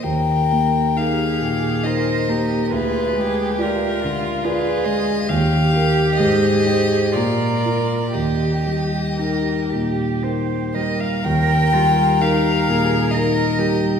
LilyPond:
<<
  \new Staff \with { instrumentName = "Violin" } { \time 3/4 \key ees \major \tempo 4 = 65 g''4 f''4 ees''4 | b'4 bes'4 b'8 ees''8 | f''4 ees''4 d''4 | ees''2 r8 ees''16 f''16 |
g''4 f''4 ees''4 | }
  \new Staff \with { instrumentName = "Violin" } { \time 3/4 \key ees \major bes'4 aes'8 g'8 c''8 bes'8 | aes'8 g'8 f'2 | g'4 aes'4 bes'4 | g'2. |
bes'2. | }
  \new Staff \with { instrumentName = "Cello" } { \time 3/4 \key ees \major r4 g'8 aes'8 bes'8 g'8 | f'8 aes'8 g'8 f'8 aes'4 | g'2 f'4 | g'4 bes'8 g'8 c''8 bes'8 |
bes'8 f'8 g'8 aes'8 bes'8 g'8 | }
  \new Staff \with { instrumentName = "Grand piano" } { \time 3/4 \key ees \major ees,8 bes8 <ees' bes'>8 bes,8 <ees' bes'>8 bes8 | d,8 aes8 <f' d''>8 d8 <f' d''>8 aes8 | ees,8 <g' bes'>8 aes,8 <g' c''>8 bes,8 <f' bes'>8 | ees,8 g8 <ees' bes'>8 bes,8 <ees' bes'>8 g8 |
ees,8 g8 <ees' bes'>8 bes,8 <ees' bes'>8 g8 | }
>>